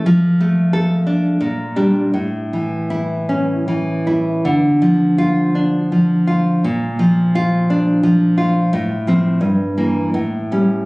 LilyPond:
\new Staff \with { instrumentName = "Nylon-string guitar" } { \clef bass \time 3/4 \key d \minor \tempo 4 = 83 << { r4 a'4 r8 d'8 | r4 e'4 r4 | r4 f'4 r4 | r4 f'4 r4 |
r8 c'8 r8 bes8 r8 cis'8 | } \\ { f8 a4 d'8 bes,8 g8 | a,8 e4 cis'8 e8 e'8 | d8 f4 d'8 f8 f'8 | bes,8 f4 d'8 f8 f'8 |
a,8 f8 g,8 e8 a,8 g8 | } >> }